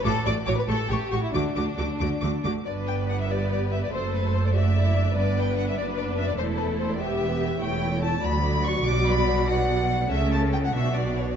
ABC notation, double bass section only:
X:1
M:6/8
L:1/8
Q:3/8=96
K:D
V:1 name="Double bass section" clef=bass
A,,, A,,, A,,, A,,, A,,, A,,, | D,, D,, D,, D,, D,, D,, | [K:G] G,,,6 | F,,,6 |
G,,,3 F,,,3 | E,,,6 | [K:Bm] E,,,3 D,,3 | B,,,6 |
C,,3 B,,,3 |]